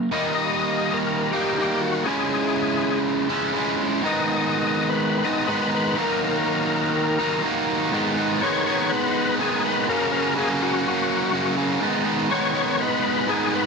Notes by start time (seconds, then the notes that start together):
0.11 D#3 G3 A#3 D#4 D#5
0.35 D#5
0.94 A#4
1.31 A#3 D#4 G4
1.35 D#3 G3
1.55 D#3 G3 G4
1.59 A#3 D#4
1.80 F#4
2.03 C#3 G#3 G#4
2.08 C#4 E4
3.29 C#3 G#3 C#4 E4
3.53 C#3 G#3 C#4 E4
4.03 G#2 D#3 G#3 B3 D#4 D#5
4.27 D#5
4.89 B4
5.23 G#2 D#3 G#3 B3 D#4 D#5
5.47 G#2 D#3 G#3 B3 D#4 B4
5.74 B4
5.96 D#3 F#3 A#3 D#4
6.00 A#4
7.19 D#3 F#3 A#3 D#4
7.44 D#3 F#3 A#3 D#4
7.92 G#2 D#3 G#3 B3 D#4
8.17 G#3 B3 D#4
8.42 D#3 G#3 B3 D#4 C#5
8.66 G#3 B3 D#4
8.89 B4
9.39 G#2 D#3 G#3 B3 D#4 G#4
9.64 G#3 B3 D#4 B4
9.88 F#2 C#3 F#3 A#3 C#4 A#4
10.12 F#3 A#3 C#4
10.36 C#3 F#3 A#3 C#4 G#4
10.60 F#3 A#3 C#4 F#4
10.88 F#4
11.33 F#2 C#3 F#3 A#3 C#4
11.57 F#3 A#3 C#4
11.80 G#2 D#3 G#3 B3 D#4
12.04 G#3 B3 D#4
12.30 D#3 G#3 B3 D#4 C#5
12.54 G#3 B3 D#4
12.80 B4
13.27 G#2 D#3 G#3 B3 D#4 G#4
13.51 G#3 B3 D#4
13.55 B4